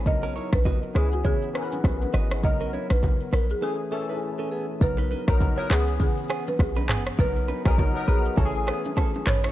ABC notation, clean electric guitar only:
X:1
M:4/4
L:1/16
Q:"Swing 16ths" 1/4=101
K:B
V:1 name="Clean electric guitar"
z [CA] [Ec] z [Fd] z [EB] z [Ec]2 z4 [Fd] z | z [CA] [Ec] z3 [DB] z [C=A] z [CA] [DB] z [CA] [B,G] z | z [DB] [DB] z2 [Ec] [EB] z3 [B,G] z2 [DB] [B,G] z | [DA] z [DB] [B,G] [DA] z [DB] z [C=A] z [B,G] z [CA] z [DB] [Ec] |]